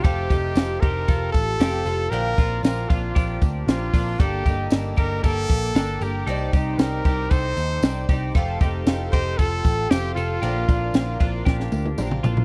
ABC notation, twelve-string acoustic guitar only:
X:1
M:4/4
L:1/8
Q:1/4=116
K:Fmix
V:1 name="Twelve-string acoustic guitar"
[F,A,CG] [A,CG] [F,A,CG] [CG]3 [F,A,CG] [A,CG] | [B,,D,B,CF] [B,CF] [D,B,CF] [B,CF]3 [D,B,CF] [B,CF] | [G,B,DA] [B,DA] [G,B,DA] [B,DA]3 [G,B,DA] [B,DA] | [C,G,CEGd] [CEGd] [CEGd] [CEGd]3 [CEGd] [CEGd] |
[F,A,CG] [A,CG] [F,A,CG] [A,CG]3 [F,A,CG] [A,CG] | [B,,D,B,CF] [B,CF] [D,B,CF] [B,CF]3 [D,B,CF] [B,CF] |]